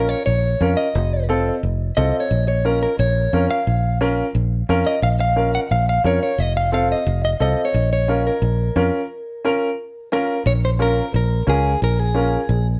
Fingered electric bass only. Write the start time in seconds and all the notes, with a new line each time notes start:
Already playing: A#1
0.27 A#1
0.60 F2
0.95 F1
1.63 F1
1.97 C2
2.31 A#1
2.99 A#1
3.33 F2
3.67 A#1
4.35 A#1
4.69 F2
5.02 A#1
5.71 A#1
6.04 F2
6.38 F1
7.06 F1
7.40 C2
7.74 A#1
8.42 A#1
8.76 F2
10.46 A#1
11.14 A#1
11.47 C#2
11.82 A#1
12.49 A#1